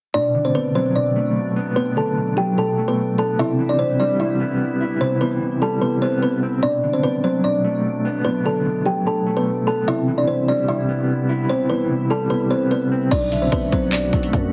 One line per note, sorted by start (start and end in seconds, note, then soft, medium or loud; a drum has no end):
0.14 3.35 B2 medium
0.14 0.54 B2 medium
0.14 3.35 F#3 medium
0.14 3.35 A3 medium
0.14 3.35 D4 medium
0.14 0.43 D4 medium
0.14 0.43 D5 loud
0.35 1.36 D3 medium
0.45 0.54 C4 medium
0.45 0.54 C5 medium
0.55 0.94 B2 medium
0.55 0.74 B3 medium
0.55 0.73 B4 medium
0.75 1.76 F#3 medium
0.75 0.94 C4 medium
0.75 0.94 C5 medium
0.95 1.75 B2 medium
0.95 1.73 D4 medium
0.95 1.73 D5 medium
1.16 2.17 A3 medium
1.56 2.58 B3 medium
1.76 2.16 B2 medium
1.76 1.95 B3 medium
1.76 1.95 B4 medium
1.96 2.37 D3 medium
1.96 2.35 A4 medium
1.96 2.35 A5 medium
2.17 2.56 B2 medium
2.37 3.39 F#3 medium
2.37 2.56 G4 medium
2.37 2.56 G5 medium
2.57 3.38 B2 medium
2.57 2.86 A4 medium
2.57 2.87 A5 medium
2.78 3.39 A3 medium
2.88 3.17 B3 medium
2.88 3.17 B4 medium
3.18 3.39 B3 medium
3.18 3.37 A4 medium
3.18 3.37 A5 medium
3.38 3.79 C3 medium
3.38 6.60 C3 medium
3.38 6.60 G3 medium
3.38 6.60 B3 medium
3.38 6.60 E4 medium
3.38 3.68 E4 medium
3.38 3.68 E5 loud
3.59 4.60 E3 medium
3.69 3.79 D4 medium
3.69 3.78 D5 medium
3.79 4.19 C3 medium
3.79 3.98 C4 medium
3.79 3.98 C5 medium
4.00 5.01 G3 medium
4.00 4.19 D4 medium
4.00 4.18 D5 medium
4.20 4.99 C3 medium
4.20 4.97 E4 medium
4.20 4.97 E5 medium
4.40 5.41 B3 medium
4.80 5.82 E4 medium
5.01 5.40 C3 medium
5.01 5.20 C4 medium
5.01 5.19 C5 medium
5.21 6.23 E3 medium
5.21 5.60 B3 medium
5.21 5.59 B4 medium
5.41 5.81 C3 medium
5.62 6.63 G3 medium
5.62 5.80 A4 medium
5.62 5.81 A5 medium
5.81 6.63 C3 medium
5.81 6.01 B3 medium
5.81 6.00 B4 medium
6.02 6.43 B3 medium
6.02 6.21 C4 medium
6.02 6.21 C5 medium
6.23 6.61 B3 medium
6.23 6.61 B4 medium
6.43 6.63 C4 medium
6.63 9.84 B2 medium
6.63 7.03 B2 medium
6.63 9.84 F#3 medium
6.63 9.84 A3 medium
6.63 9.84 D4 medium
6.63 6.92 D4 medium
6.63 6.91 D5 loud
6.83 7.23 D3 medium
6.93 7.03 C4 medium
6.93 7.03 C5 medium
7.03 7.42 B2 medium
7.03 7.22 B3 medium
7.03 7.22 B4 medium
7.24 8.25 F#3 medium
7.24 7.43 C4 medium
7.24 7.42 C5 medium
7.44 8.24 B2 medium
7.44 8.22 D4 medium
7.44 8.21 D5 medium
7.64 8.66 A3 medium
8.05 9.06 B3 medium
8.25 8.64 B2 medium
8.25 8.44 B3 medium
8.25 8.43 B4 medium
8.45 8.86 D3 medium
8.45 8.84 A4 medium
8.45 8.84 A5 medium
8.65 9.05 B2 medium
8.86 9.88 F#3 medium
8.86 9.04 G4 medium
8.86 9.05 G5 medium
9.06 9.87 B2 medium
9.06 9.35 A4 medium
9.06 9.35 A5 medium
9.27 9.87 A3 medium
9.37 9.66 B3 medium
9.37 9.65 B4 medium
9.67 9.87 B3 medium
9.67 9.86 A4 medium
9.67 9.86 A5 medium
9.87 10.27 C3 medium
9.87 13.08 C3 medium
9.87 13.08 G3 medium
9.87 13.08 B3 medium
9.87 13.08 E4 medium
9.87 10.17 E4 medium
9.87 10.16 E5 loud
10.08 11.09 E3 medium
10.18 10.27 D4 medium
10.18 10.27 D5 medium
10.27 10.67 C3 medium
10.27 10.47 C4 medium
10.27 10.46 C5 medium
10.48 11.50 G3 medium
10.48 10.67 D4 medium
10.48 10.67 D5 medium
10.68 11.48 C3 medium
10.68 11.46 E4 medium
10.68 11.46 E5 medium
10.89 11.90 B3 medium
11.29 12.30 E4 medium
11.49 11.89 C3 medium
11.49 11.68 C4 medium
11.49 11.68 C5 medium
11.70 12.71 E3 medium
11.70 12.08 B3 medium
11.70 12.08 B4 medium
11.90 12.29 C3 medium
12.10 13.12 G3 medium
12.10 12.29 A4 medium
12.10 12.29 A5 medium
12.30 13.12 C3 medium
12.30 12.49 B3 medium
12.30 12.49 B4 medium
12.50 12.91 B3 medium
12.50 12.70 C4 medium
12.50 12.69 C5 medium
12.71 13.10 B3 medium
12.71 13.09 B4 medium
12.92 13.12 C4 medium
13.11 13.51 B1 loud
13.11 13.51 B2 medium
13.11 14.53 D3 medium
13.11 14.53 A3 medium
13.11 14.53 B3 medium
13.11 13.41 D4 medium
13.11 14.53 F#4 medium
13.11 13.40 D5 loud
13.11 kick loud
13.11 closed hi-hat medium
13.11 crash loud
13.32 13.72 D3 medium
13.32 13.89 E5 medium
13.32 closed hi-hat medium
13.42 13.52 C4 medium
13.42 13.51 C5 medium
13.52 13.72 B1 loud
13.52 13.91 B2 medium
13.52 13.71 B3 medium
13.52 13.71 B4 medium
13.52 kick medium
13.52 closed hi-hat medium
13.72 14.11 B1 loud
13.72 14.53 F#3 loud
13.72 13.91 C4 medium
13.72 13.91 C5 medium
13.72 kick loud
13.72 closed hi-hat medium
13.92 14.53 B2 medium
13.92 14.53 D4 medium
13.92 14.53 D5 medium
13.92 clap loud
13.92 closed hi-hat medium
14.13 14.32 B1 loud
14.13 14.53 A3 medium
14.13 kick loud
14.13 closed hi-hat medium
14.23 closed hi-hat medium
14.33 14.53 F#2 loud
14.33 kick loud
14.33 closed hi-hat medium